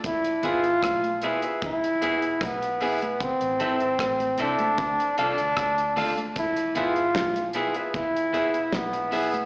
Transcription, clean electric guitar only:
\new Staff \with { instrumentName = "Clean electric guitar" } { \time 4/4 \key e \phrygian \tempo 4 = 76 r8 <b e' gis'>8 r8 <b e' gis'>8 r8 <b e' gis'>8 r8 <b e' gis'>8 | r8 <c' e' a'>8 r8 <c' e' a'>8 r8 <d' f' a'>8 r8 <d' f' a'>8 | r8 <b e' gis'>8 r8 <b e' gis'>8 r8 <b e' gis'>8 r8 <b e' gis'>8 | }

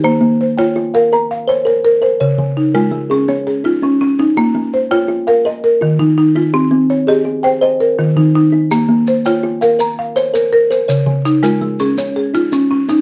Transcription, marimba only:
\new Staff \with { instrumentName = "Marimba" } { \time 12/8 \key bes \dorian \tempo 4. = 110 << { g'8 r8 c''8 des''4 f''8 bes''8 f''4 bes'4 c''8~ | c''8 r8 ees'8 f'4 aes'8 des''8 aes'4 des'4 ees'8~ | ees'8 r8 c''8 des''4 f''8 ees''8 bes'4 ees'4 f'8~ | f'8 r8 des''8 ees''4 g''8 ees''8 bes'4 ees'4. |
r4 c''8 des''4 f''8 bes''8 f''4 bes'4 c''8~ | c''8 r8 ees'8 f'4 aes'8 des''8 aes'4 des'4 ees'8 | } \\ { bes4 r8 f'4 bes'4 r8 des''4 bes'4 | des4 r8 aes4 des'4 r8 f'4 des'4 | bes4 r8 f'4 bes'8 r4 ees4 ees'4 | c'4 r8 g'4 c''8 r4 ees4 ees'4 |
bes4 r8 f'4 bes'4 r8 des''4 bes'4 | des4 r8 aes4 des'4 r8 f'4 des'4 | } >> }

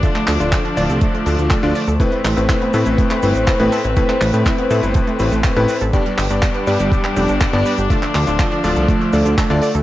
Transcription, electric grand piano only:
\new Staff \with { instrumentName = "Electric grand piano" } { \time 4/4 \key a \minor \tempo 4 = 122 <d a d' f' d''>8 r16 <d a d' f' d''>8. <d a d' f' d''>4 <d a d' f' d''>8. <d a d' f' d''>8 r16 | <a, a c' e' b'>8 r16 <a, a c' e' b'>8. <a, a c' e' b'>4 <a, a c' e' b'>8. <a, a c' e' b'>8 r16 | <a, a c' e' b'>8 r16 <a, a c' e' b'>8. <a, a c' e' b'>4 <a, a c' e' b'>8. <a, a c' e' b'>8 r16 | <g, b d' g' d''>8 r16 <g, b d' g' d''>8. <g, b d' g' d''>4 <g, b d' g' d''>8. <g, b d' g' d''>8 r16 |
<d a d' f' d''>8 r16 <d a d' f' d''>8. <d a d' f' d''>4 <d a d' f' d''>8. <d a d' f' d''>8 r16 | }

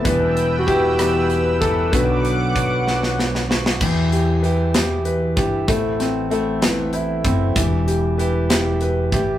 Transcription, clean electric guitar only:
\new Staff \with { instrumentName = "Clean electric guitar" } { \time 6/8 \key e \minor \tempo 4. = 64 <e, b, e g e' g'>4 <e g e' g'>8 <e, b, e g e' g'>4 <e g e' g'>8 | <b, fis b d' fis'>4 <fis b d' fis'>8 <b, fis b d' fis'>4 <b d' fis'>8 | <e, b, e g e' g'>4 <e g e' g'>8 <e, b, e g e' g'>4 <e g e' g'>8 | <a, e b c' e'>4 <e b c' e'>8 <a, e b c' e'>4 <b c' e'>8 |
<e, b, e g e' g'>4 <e g e' g'>8 <e, b, e g e' g'>4 <e g e' g'>8 | }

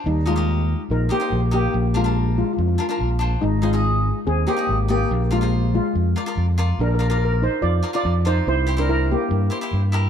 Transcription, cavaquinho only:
\new Staff \with { instrumentName = "Cavaquinho" } { \time 4/4 \key ees \major \tempo 4 = 143 r8 <ees' g' bes'>16 <ees' g' bes'>4 r8. <ees' g' c''>16 <ees' g' c''>8 r16 <ees' g' bes'>8 | r8 <d' f' bes'>16 <d' f' bes'>4 r8. <d' f' bes'>16 <d' f' bes'>8 r16 <d' f' c''>8 | r8 <ees' aes' c''>16 <ees' aes' ees''>4 r8. <ees' aes' c''>16 <ees' aes' ees''>8 r16 <ees' aes' d''>8 | r8 <f' bes' d''>16 <f' bes' c''>4 r8. <f' bes' d''>16 <f' bes' d''>8 r16 <f' bes' d''>8 |
r8 <f' bes' d''>16 <f' bes' d''>4 r8. <f' bes' d''>16 <f' bes' d''>8 r16 <f' bes' d''>8 | r8 <e' g' c''>16 <e' g' c''>4 r8. <e' g' c''>16 <e' g' c''>8 r16 <e' g' bes'>8 | }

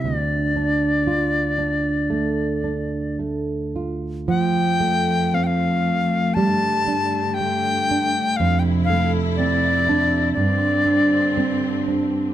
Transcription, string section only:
\new Staff \with { instrumentName = "String section" } { \clef bass \time 4/4 \key d \minor \tempo 4 = 58 << { r1 | a1 | e'2 c'2 | } \\ { r1 | <f, f>2 <g, d>2 | <f, c>2 <g, d>2 | } >> }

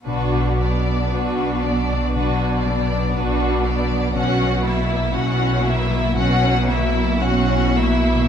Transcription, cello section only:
\new Staff \with { instrumentName = "Cello section" } { \clef bass \time 4/4 \key b \minor \tempo 4 = 59 b,4 b,4 b,4 b,4 | b,4 b,4 b,4 b,4 | }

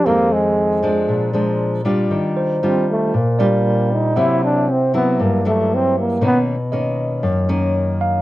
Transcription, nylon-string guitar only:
\new Staff \with { instrumentName = "Nylon-string guitar" } { \clef bass \time 4/4 \key f \mixolydian \tempo 4 = 117 << { <ees aes c'>4. <f aes d'>4 <f aes d'>4 <g d' f'>8~ | \key c \minor <g d' f'>4 <g d' f'>4 r8 <g d' f'>4. | <fis bes e'>4 r8 <fis bes e'>4 <fis bes e'>4. | <dis ais cis'>8 r8 <dis ais cis'>4. <dis ais cis'>4. | } \\ { f,2 bes,2 | ees2 bes,2 | c2 g,2 | b,2 fis,2 | } >> }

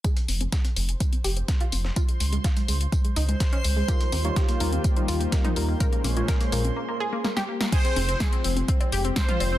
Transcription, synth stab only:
\new Staff \with { instrumentName = "Synth stab" } { \time 4/4 \key f \minor \tempo 4 = 125 r1 | r1 | <g ees' f' bes'>16 r8 <g ees' f' des''>8. <g ees' f' bes'>16 r8 <g ees' f' c''>8. <g ees' f' bes'>16 r16 <g ees' f' bes'>16 r16 | <bes, aes des' f' bes'>16 r8 <bes, aes des' f' des''>8. <bes, aes des' f' bes'>16 r2 r16 |
r1 | }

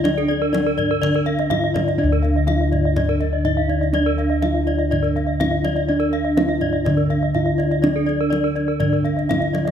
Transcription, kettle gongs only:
<<
  \new Staff \with { instrumentName = "Kettle gongs" } { \time 4/4 \tempo 4 = 123 << { r4 ees'8 r4. ees'8 r8 | r4 ees'8 r4. ees'8 r8 | r4 ees'8 r4. ees'8 r8 | r4 ees'8 r4. ees'8 r8 |
r4 ees'8 r4. ees'8 r8 | } \\ { d'2. r4 | d'2. r4 | d'2. r4 | d'2. r4 |
d'2. r4 | } >> }
  \new Staff \with { instrumentName = "Kettle gongs" } { \clef bass \time 4/4 << { d4 r4 d2~ | d4 r2. | r2 d2~ | d4 r4 d2~ |
d4 r4 d2 | } \\ { r1 | d,1~ | d,2 r2 | r1 |
r1 | } >> }
>>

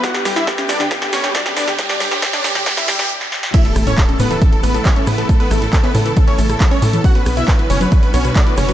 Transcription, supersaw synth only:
\new Staff \with { instrumentName = "Supersaw synth" } { \time 4/4 \key a \mixolydian \tempo 4 = 137 <fis' fis''>16 g'16 g'16 <e' e''>16 g'16 g'16 <d' d''>16 g'16 g'16 g'16 <cis' cis''>16 g'16 <d' d''>16 g'16 <d' d''>16 g'16 | g'16 <d' d''>16 g'16 g'16 g'16 <d' d''>16 g'16 g'16 g'16 <e' e''>16 g'16 g'16 r4 | <e' e''>16 a'16 a'16 <cis' cis''>16 a'16 a'16 <b b'>16 a'16 a'16 a'16 <b b'>16 a'16 <cis' cis''>16 a'16 <b b'>16 a'16 | a'16 <b b'>16 a'16 a'16 a'16 <b b'>16 a'16 a'16 a'16 <cis' cis''>16 a'16 a'16 a'16 <cis' cis''>16 a'16 a'16 |
<fis' fis''>16 b'16 b'16 <e' e''>16 b'16 b'16 <cis' cis''>16 b'16 b'16 b'16 <cis' cis''>16 b'16 <d' d''>16 b'16 <cis' cis''>16 b'16 | }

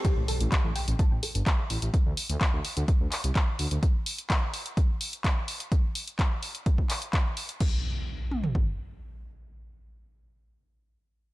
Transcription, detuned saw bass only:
\new Staff \with { instrumentName = "Detuned saw bass" } { \clef bass \time 4/4 \key a \minor \tempo 4 = 127 r16 a,,16 r16 a,,16 r16 a,,16 r16 a,,16 r16 a,,16 r16 g,,16 r8 a,,16 a,,16 | r16 d,16 r16 d,16 r16 d,16 r16 d,16 r16 d,16 r16 c,16 r8 d,16 d,16 | r1 | r1 |
r1 | r1 | }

